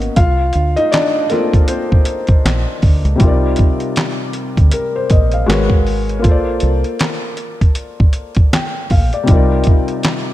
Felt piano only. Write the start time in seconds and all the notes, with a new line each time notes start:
Already playing: A#3 B3 C#4 D#4 F#4 D#5
0.17 F4 F5
0.77 D#4 D#5
0.92 D4 D5
1.30 A#3 C4 F4 A4 A#4
1.68 C4 C5
3.16 C3 G3
3.20 D#4 F4
3.25 A#4 D5
4.73 A#4
4.96 C5
5.12 D#5
5.33 F5
5.46 G#3 F#4 A#4
5.51 B4 C#5
6.19 A#3 F4
6.25 A4 C5
6.31 D5
8.53 G5
8.91 F5
9.14 D5
9.23 C3 G3
9.28 D#4 F4
9.33 A#4 D5